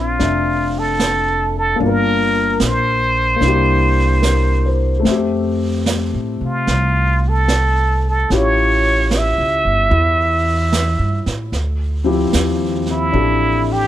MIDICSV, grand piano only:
0, 0, Header, 1, 2, 480
1, 0, Start_track
1, 0, Key_signature, -1, "major"
1, 0, Tempo, 808625
1, 1074, Time_signature, 4, 2, 24, 8
1, 8236, End_track
2, 0, Start_track
2, 0, Title_t, "Grand piano"
2, 0, Program_c, 0, 0
2, 0, Control_c, 0, 64, 127
2, 0, Note_on_c, 0, 60, 51
2, 0, Note_on_c, 0, 62, 47
2, 0, Note_on_c, 0, 65, 46
2, 0, Note_on_c, 0, 69, 54
2, 106, Note_off_c, 0, 62, 0
2, 115, Note_on_c, 0, 62, 39
2, 134, Note_on_c, 0, 76, 47
2, 1045, Note_on_c, 0, 58, 53
2, 1058, Note_off_c, 0, 62, 0
2, 1067, Note_on_c, 0, 62, 47
2, 1069, Note_off_c, 0, 60, 0
2, 1078, Note_off_c, 0, 65, 0
2, 1082, Note_off_c, 0, 76, 0
2, 1082, Control_c, 0, 64, 0
2, 1085, Note_off_c, 0, 69, 0
2, 1087, Note_on_c, 0, 65, 45
2, 1113, Note_on_c, 0, 70, 58
2, 1190, Control_c, 0, 64, 127
2, 1987, Note_off_c, 0, 58, 0
2, 1996, Note_on_c, 0, 58, 43
2, 2011, Note_off_c, 0, 62, 0
2, 2020, Note_on_c, 0, 62, 40
2, 2037, Note_off_c, 0, 65, 0
2, 2037, Note_on_c, 0, 64, 40
2, 2040, Control_c, 0, 64, 0
2, 2051, Note_off_c, 0, 70, 0
2, 2061, Note_on_c, 0, 67, 49
2, 2161, Control_c, 0, 64, 127
2, 2506, Note_on_c, 0, 70, 40
2, 2765, Note_on_c, 0, 72, 45
2, 2892, Note_off_c, 0, 70, 0
2, 2965, Note_on_c, 0, 57, 46
2, 2984, Note_off_c, 0, 58, 0
2, 2987, Note_on_c, 0, 60, 42
2, 2996, Note_off_c, 0, 62, 0
2, 3004, Note_off_c, 0, 64, 0
2, 3008, Note_on_c, 0, 76, 43
2, 3009, Control_c, 0, 64, 0
2, 3016, Note_off_c, 0, 67, 0
2, 3033, Note_on_c, 0, 67, 48
2, 3099, Control_c, 0, 64, 127
2, 3102, Note_off_c, 0, 72, 0
2, 4911, Note_off_c, 0, 57, 0
2, 4922, Note_off_c, 0, 60, 0
2, 4932, Note_off_c, 0, 67, 0
2, 4933, Note_off_c, 0, 76, 0
2, 4933, Note_on_c, 0, 61, 44
2, 4936, Note_on_c, 0, 64, 42
2, 4937, Control_c, 0, 64, 0
2, 4938, Note_on_c, 0, 65, 42
2, 4941, Note_on_c, 0, 67, 49
2, 5032, Control_c, 0, 64, 127
2, 5869, Note_off_c, 0, 64, 0
2, 5878, Note_on_c, 0, 64, 47
2, 6835, Note_off_c, 0, 64, 0
2, 6842, Note_off_c, 0, 61, 0
2, 6844, Note_off_c, 0, 65, 0
2, 6846, Note_off_c, 0, 67, 0
2, 6849, Control_c, 0, 64, 0
2, 6966, Control_c, 0, 64, 127
2, 7149, Note_on_c, 0, 60, 47
2, 7155, Note_on_c, 0, 64, 45
2, 7157, Note_on_c, 0, 53, 47
2, 7157, Note_on_c, 0, 67, 56
2, 7791, Note_on_c, 0, 62, 44
2, 7796, Note_off_c, 0, 67, 0
2, 7804, Note_on_c, 0, 69, 48
2, 7805, Note_on_c, 0, 67, 37
2, 8236, Note_off_c, 0, 53, 0
2, 8236, Note_off_c, 0, 60, 0
2, 8236, Note_off_c, 0, 62, 0
2, 8236, Note_off_c, 0, 64, 0
2, 8236, Note_off_c, 0, 67, 0
2, 8236, Note_off_c, 0, 69, 0
2, 8236, End_track
0, 0, End_of_file